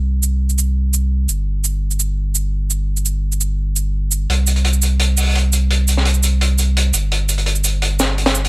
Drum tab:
HH |----------------|----------------|----------------|x-xxx-x-x-o-x-x-|
SH |--x--xx---x---x-|--x--xx---x---x-|-xx--xx---x---x-|--x--xx---x---x-|
SD |----------------|----------------|----------------|----------------|

HH |x-x-x-x-x-x-x-x-|x-xxx-x-x-x-xx-x|
SH |--x--xx---x---x-|--x--xx---x---x-|
SD |---o------------|----------o--o--|